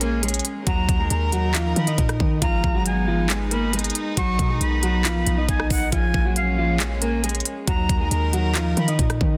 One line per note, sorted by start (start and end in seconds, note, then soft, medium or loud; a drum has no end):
0.00 0.41 A#1 loud
0.00 0.65 G#3 medium
0.00 0.65 A#3 medium
0.00 0.20 A#3 medium
0.00 0.65 C#4 medium
0.00 0.20 A#4 medium
0.00 0.22 G#5 medium
0.00 closed hi-hat medium
0.23 0.65 G#3 medium
0.23 0.64 G#4 medium
0.23 closed hi-hat medium
0.28 closed hi-hat medium
0.34 closed hi-hat medium
0.39 closed hi-hat soft
0.45 closed hi-hat medium
0.67 0.88 D#2 loud
0.67 2.40 D#3 medium
0.67 0.98 F#3 medium
0.67 2.40 D#4 medium
0.67 0.98 F#4 loud
0.67 2.40 A#4 medium
0.67 1.08 A#5 loud
0.67 kick loud
0.67 closed hi-hat medium
0.89 1.10 D#2 loud
0.89 kick loud
0.89 closed hi-hat medium
1.00 1.31 G#3 medium
1.00 1.31 G#4 medium
1.10 1.74 D#2 loud
1.10 1.72 A#5 medium
1.10 closed hi-hat medium
1.32 1.51 F#3 medium
1.32 1.51 F#4 medium
1.32 closed hi-hat medium
1.54 1.86 F3 medium
1.54 1.85 F4 medium
1.54 clap loud
1.54 closed hi-hat medium
1.76 1.97 D#3 loud
1.76 1.97 B5 medium
1.76 closed hi-hat medium
1.87 2.39 D#4 medium
1.87 2.39 D#5 medium
1.87 closed hi-hat medium
1.98 2.19 A#2 loud
1.98 kick medium
1.98 closed hi-hat medium
2.09 cross-stick loud
2.09 closed hi-hat soft
2.20 2.41 D#3 loud
2.20 kick medium
2.42 2.63 G#1 loud
2.42 2.73 F3 medium
2.42 4.16 G#3 medium
2.42 4.16 B3 medium
2.42 5.89 D#4 medium
2.42 2.73 F4 loud
2.42 2.83 A#5 loud
2.42 kick loud
2.42 closed hi-hat medium
2.64 3.91 G#1 loud
2.64 kick loud
2.75 3.06 F#3 medium
2.75 3.06 F#4 medium
2.86 3.48 G#5 medium
2.86 closed hi-hat medium
3.08 3.27 F3 medium
3.08 3.26 F4 medium
3.30 3.49 G#3 medium
3.30 3.48 G#4 medium
3.30 clap loud
3.30 closed hi-hat medium
3.51 3.70 A#3 medium
3.51 3.70 A#4 medium
3.51 3.72 B5 medium
3.51 closed hi-hat medium
3.73 4.15 G#3 medium
3.73 4.15 G#4 medium
3.73 closed hi-hat medium
3.79 closed hi-hat medium
3.84 closed hi-hat medium
3.90 closed hi-hat soft
3.95 closed hi-hat medium
4.17 4.38 B1 loud
4.17 5.91 D#3 medium
4.17 4.48 F#3 medium
4.17 5.91 B3 medium
4.17 4.48 F#4 loud
4.17 4.58 C#6 loud
4.17 kick loud
4.17 closed hi-hat medium
4.39 4.60 B2 loud
4.39 kick loud
4.39 closed hi-hat medium
4.50 4.81 G#3 medium
4.50 4.81 G#4 medium
4.61 5.24 B1 loud
4.61 5.45 B5 medium
4.61 closed hi-hat medium
4.83 5.02 F#3 medium
4.83 5.01 F#4 medium
4.83 closed hi-hat medium
5.05 5.36 F3 medium
5.05 5.36 F4 medium
5.05 clap loud
5.05 closed hi-hat medium
5.27 5.48 B1 loud
5.27 closed hi-hat medium
5.38 5.89 D#4 medium
5.38 5.89 D#5 medium
5.49 5.70 B1 loud
5.49 5.69 G#5 medium
5.49 kick medium
5.49 closed hi-hat medium
5.60 cross-stick loud
5.70 5.92 B1 loud
5.70 5.91 F#5 medium
5.70 kick medium
5.70 open hi-hat medium
5.92 6.13 A#1 loud
5.92 6.24 F3 medium
5.92 7.66 G#3 medium
5.92 7.66 A#3 medium
5.92 7.66 C#4 medium
5.92 6.23 F4 loud
5.92 6.34 G#5 loud
5.92 kick loud
5.92 closed hi-hat medium
6.14 7.42 A#1 loud
6.14 kick loud
6.25 6.56 F#3 medium
6.25 6.56 F#4 medium
6.36 6.98 F5 medium
6.36 closed hi-hat medium
6.58 6.77 F3 medium
6.58 6.77 F4 medium
6.80 6.99 G#3 medium
6.80 6.98 G#4 medium
6.80 clap loud
6.80 closed hi-hat medium
7.02 7.21 A#3 medium
7.02 7.20 A#4 medium
7.02 7.23 G#5 medium
7.02 closed hi-hat medium
7.24 7.65 G#3 medium
7.24 7.65 G#4 medium
7.24 closed hi-hat medium
7.29 closed hi-hat medium
7.35 closed hi-hat medium
7.40 closed hi-hat soft
7.45 closed hi-hat medium
7.67 7.89 D#2 loud
7.67 9.37 D#3 medium
7.67 7.99 F#3 medium
7.67 9.37 D#4 medium
7.67 7.98 F#4 loud
7.67 9.37 A#4 medium
7.67 8.09 A#5 loud
7.67 kick loud
7.67 closed hi-hat medium
7.89 8.10 D#2 loud
7.89 kick loud
7.89 closed hi-hat medium
8.00 8.32 G#3 medium
8.00 8.31 G#4 medium
8.11 8.74 D#2 loud
8.11 8.73 A#5 medium
8.11 closed hi-hat medium
8.33 8.52 F#3 medium
8.33 8.52 F#4 medium
8.33 closed hi-hat medium
8.55 8.86 F3 medium
8.55 8.86 F4 medium
8.55 clap loud
8.55 closed hi-hat medium
8.77 8.98 D#3 loud
8.77 8.98 B5 medium
8.77 closed hi-hat medium
8.88 9.37 D#4 medium
8.88 9.37 D#5 medium
8.88 closed hi-hat medium
8.99 9.20 A#2 loud
8.99 kick medium
8.99 closed hi-hat medium
9.10 cross-stick loud
9.10 closed hi-hat soft
9.21 9.37 D#3 loud
9.21 kick medium